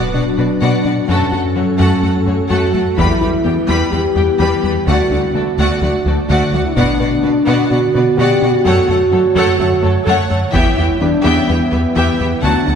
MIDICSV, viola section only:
0, 0, Header, 1, 2, 480
1, 0, Start_track
1, 0, Tempo, 472441
1, 1112, Time_signature, 4, 2, 24, 8
1, 12956, End_track
2, 0, Start_track
2, 0, Title_t, "Viola section"
2, 0, Program_c, 0, 48
2, 0, Note_on_c, 0, 59, 47
2, 0, Note_on_c, 0, 66, 45
2, 129, Note_off_c, 0, 59, 0
2, 131, Note_off_c, 0, 66, 0
2, 139, Note_on_c, 0, 59, 33
2, 142, Note_on_c, 0, 66, 31
2, 220, Note_off_c, 0, 59, 0
2, 224, Note_off_c, 0, 66, 0
2, 381, Note_on_c, 0, 66, 30
2, 384, Note_on_c, 0, 59, 29
2, 463, Note_off_c, 0, 66, 0
2, 465, Note_off_c, 0, 59, 0
2, 625, Note_on_c, 0, 66, 38
2, 626, Note_on_c, 0, 59, 43
2, 851, Note_off_c, 0, 66, 0
2, 852, Note_off_c, 0, 59, 0
2, 871, Note_on_c, 0, 59, 35
2, 874, Note_on_c, 0, 66, 32
2, 952, Note_off_c, 0, 59, 0
2, 955, Note_off_c, 0, 66, 0
2, 1103, Note_on_c, 0, 66, 49
2, 1105, Note_on_c, 0, 57, 48
2, 1330, Note_off_c, 0, 66, 0
2, 1332, Note_off_c, 0, 57, 0
2, 1344, Note_on_c, 0, 57, 30
2, 1345, Note_on_c, 0, 66, 33
2, 1425, Note_off_c, 0, 57, 0
2, 1427, Note_off_c, 0, 66, 0
2, 1581, Note_on_c, 0, 57, 36
2, 1582, Note_on_c, 0, 66, 37
2, 1662, Note_off_c, 0, 57, 0
2, 1663, Note_off_c, 0, 66, 0
2, 1818, Note_on_c, 0, 66, 45
2, 1820, Note_on_c, 0, 57, 47
2, 2045, Note_off_c, 0, 66, 0
2, 2049, Note_off_c, 0, 57, 0
2, 2057, Note_on_c, 0, 66, 28
2, 2065, Note_on_c, 0, 57, 33
2, 2138, Note_off_c, 0, 66, 0
2, 2146, Note_off_c, 0, 57, 0
2, 2302, Note_on_c, 0, 57, 31
2, 2308, Note_on_c, 0, 66, 36
2, 2384, Note_off_c, 0, 57, 0
2, 2389, Note_off_c, 0, 66, 0
2, 2544, Note_on_c, 0, 66, 45
2, 2546, Note_on_c, 0, 57, 44
2, 2766, Note_off_c, 0, 66, 0
2, 2767, Note_off_c, 0, 57, 0
2, 2778, Note_on_c, 0, 66, 36
2, 2779, Note_on_c, 0, 57, 40
2, 2859, Note_off_c, 0, 66, 0
2, 2860, Note_off_c, 0, 57, 0
2, 3025, Note_on_c, 0, 67, 44
2, 3029, Note_on_c, 0, 55, 47
2, 3251, Note_off_c, 0, 67, 0
2, 3254, Note_off_c, 0, 55, 0
2, 3271, Note_on_c, 0, 55, 34
2, 3271, Note_on_c, 0, 67, 30
2, 3352, Note_off_c, 0, 55, 0
2, 3353, Note_off_c, 0, 67, 0
2, 3507, Note_on_c, 0, 67, 38
2, 3510, Note_on_c, 0, 55, 32
2, 3589, Note_off_c, 0, 67, 0
2, 3592, Note_off_c, 0, 55, 0
2, 3736, Note_on_c, 0, 67, 48
2, 3738, Note_on_c, 0, 55, 45
2, 3965, Note_off_c, 0, 55, 0
2, 3966, Note_off_c, 0, 67, 0
2, 3977, Note_on_c, 0, 55, 38
2, 3978, Note_on_c, 0, 67, 31
2, 4059, Note_off_c, 0, 55, 0
2, 4060, Note_off_c, 0, 67, 0
2, 4224, Note_on_c, 0, 67, 36
2, 4226, Note_on_c, 0, 55, 33
2, 4305, Note_off_c, 0, 67, 0
2, 4308, Note_off_c, 0, 55, 0
2, 4467, Note_on_c, 0, 55, 44
2, 4468, Note_on_c, 0, 67, 47
2, 4692, Note_off_c, 0, 55, 0
2, 4693, Note_off_c, 0, 67, 0
2, 4716, Note_on_c, 0, 55, 35
2, 4718, Note_on_c, 0, 67, 44
2, 4798, Note_off_c, 0, 55, 0
2, 4799, Note_off_c, 0, 67, 0
2, 4951, Note_on_c, 0, 66, 45
2, 4953, Note_on_c, 0, 57, 48
2, 5174, Note_off_c, 0, 66, 0
2, 5176, Note_off_c, 0, 57, 0
2, 5199, Note_on_c, 0, 57, 37
2, 5202, Note_on_c, 0, 66, 36
2, 5280, Note_off_c, 0, 57, 0
2, 5283, Note_off_c, 0, 66, 0
2, 5439, Note_on_c, 0, 66, 38
2, 5442, Note_on_c, 0, 57, 33
2, 5520, Note_off_c, 0, 66, 0
2, 5523, Note_off_c, 0, 57, 0
2, 5683, Note_on_c, 0, 66, 55
2, 5684, Note_on_c, 0, 57, 46
2, 5901, Note_off_c, 0, 57, 0
2, 5901, Note_off_c, 0, 66, 0
2, 5923, Note_on_c, 0, 57, 36
2, 5927, Note_on_c, 0, 66, 37
2, 6004, Note_off_c, 0, 57, 0
2, 6008, Note_off_c, 0, 66, 0
2, 6162, Note_on_c, 0, 57, 31
2, 6167, Note_on_c, 0, 66, 38
2, 6243, Note_off_c, 0, 57, 0
2, 6249, Note_off_c, 0, 66, 0
2, 6397, Note_on_c, 0, 66, 57
2, 6398, Note_on_c, 0, 57, 49
2, 6618, Note_off_c, 0, 57, 0
2, 6618, Note_off_c, 0, 66, 0
2, 6637, Note_on_c, 0, 66, 44
2, 6639, Note_on_c, 0, 57, 38
2, 6718, Note_off_c, 0, 66, 0
2, 6720, Note_off_c, 0, 57, 0
2, 6870, Note_on_c, 0, 66, 48
2, 6875, Note_on_c, 0, 59, 56
2, 7094, Note_off_c, 0, 66, 0
2, 7097, Note_off_c, 0, 59, 0
2, 7114, Note_on_c, 0, 66, 38
2, 7117, Note_on_c, 0, 59, 33
2, 7195, Note_off_c, 0, 66, 0
2, 7198, Note_off_c, 0, 59, 0
2, 7348, Note_on_c, 0, 59, 39
2, 7351, Note_on_c, 0, 66, 41
2, 7429, Note_off_c, 0, 59, 0
2, 7433, Note_off_c, 0, 66, 0
2, 7581, Note_on_c, 0, 59, 62
2, 7586, Note_on_c, 0, 66, 66
2, 7809, Note_off_c, 0, 59, 0
2, 7812, Note_off_c, 0, 66, 0
2, 7821, Note_on_c, 0, 59, 39
2, 7822, Note_on_c, 0, 66, 40
2, 7902, Note_off_c, 0, 59, 0
2, 7904, Note_off_c, 0, 66, 0
2, 8068, Note_on_c, 0, 59, 43
2, 8072, Note_on_c, 0, 66, 41
2, 8149, Note_off_c, 0, 59, 0
2, 8154, Note_off_c, 0, 66, 0
2, 8309, Note_on_c, 0, 59, 56
2, 8313, Note_on_c, 0, 66, 55
2, 8533, Note_off_c, 0, 59, 0
2, 8536, Note_off_c, 0, 66, 0
2, 8552, Note_on_c, 0, 59, 40
2, 8556, Note_on_c, 0, 66, 49
2, 8633, Note_off_c, 0, 59, 0
2, 8637, Note_off_c, 0, 66, 0
2, 8791, Note_on_c, 0, 69, 54
2, 8793, Note_on_c, 0, 57, 64
2, 9014, Note_off_c, 0, 69, 0
2, 9016, Note_off_c, 0, 57, 0
2, 9029, Note_on_c, 0, 69, 45
2, 9032, Note_on_c, 0, 57, 45
2, 9110, Note_off_c, 0, 69, 0
2, 9113, Note_off_c, 0, 57, 0
2, 9271, Note_on_c, 0, 69, 43
2, 9277, Note_on_c, 0, 57, 42
2, 9352, Note_off_c, 0, 69, 0
2, 9358, Note_off_c, 0, 57, 0
2, 9505, Note_on_c, 0, 69, 67
2, 9507, Note_on_c, 0, 57, 61
2, 9731, Note_off_c, 0, 69, 0
2, 9732, Note_off_c, 0, 57, 0
2, 9749, Note_on_c, 0, 57, 47
2, 9752, Note_on_c, 0, 69, 44
2, 9830, Note_off_c, 0, 57, 0
2, 9833, Note_off_c, 0, 69, 0
2, 9980, Note_on_c, 0, 69, 44
2, 9982, Note_on_c, 0, 57, 46
2, 10062, Note_off_c, 0, 69, 0
2, 10063, Note_off_c, 0, 57, 0
2, 10220, Note_on_c, 0, 69, 54
2, 10222, Note_on_c, 0, 57, 62
2, 10449, Note_off_c, 0, 69, 0
2, 10450, Note_off_c, 0, 57, 0
2, 10464, Note_on_c, 0, 69, 48
2, 10466, Note_on_c, 0, 57, 47
2, 10545, Note_off_c, 0, 69, 0
2, 10547, Note_off_c, 0, 57, 0
2, 10699, Note_on_c, 0, 59, 61
2, 10706, Note_on_c, 0, 67, 65
2, 10928, Note_off_c, 0, 59, 0
2, 10932, Note_off_c, 0, 67, 0
2, 10947, Note_on_c, 0, 59, 42
2, 10950, Note_on_c, 0, 67, 43
2, 11028, Note_off_c, 0, 59, 0
2, 11031, Note_off_c, 0, 67, 0
2, 11189, Note_on_c, 0, 59, 43
2, 11190, Note_on_c, 0, 67, 45
2, 11270, Note_off_c, 0, 59, 0
2, 11271, Note_off_c, 0, 67, 0
2, 11414, Note_on_c, 0, 59, 59
2, 11420, Note_on_c, 0, 67, 57
2, 11646, Note_off_c, 0, 59, 0
2, 11649, Note_off_c, 0, 67, 0
2, 11663, Note_on_c, 0, 59, 41
2, 11664, Note_on_c, 0, 67, 41
2, 11744, Note_off_c, 0, 59, 0
2, 11745, Note_off_c, 0, 67, 0
2, 11913, Note_on_c, 0, 67, 37
2, 11917, Note_on_c, 0, 59, 42
2, 11995, Note_off_c, 0, 67, 0
2, 11999, Note_off_c, 0, 59, 0
2, 12152, Note_on_c, 0, 67, 54
2, 12154, Note_on_c, 0, 59, 49
2, 12375, Note_off_c, 0, 67, 0
2, 12376, Note_off_c, 0, 59, 0
2, 12394, Note_on_c, 0, 67, 41
2, 12401, Note_on_c, 0, 59, 38
2, 12475, Note_off_c, 0, 67, 0
2, 12482, Note_off_c, 0, 59, 0
2, 12633, Note_on_c, 0, 54, 43
2, 12636, Note_on_c, 0, 66, 51
2, 12851, Note_off_c, 0, 54, 0
2, 12854, Note_off_c, 0, 66, 0
2, 12863, Note_on_c, 0, 54, 37
2, 12866, Note_on_c, 0, 66, 36
2, 12945, Note_off_c, 0, 54, 0
2, 12947, Note_off_c, 0, 66, 0
2, 12956, End_track
0, 0, End_of_file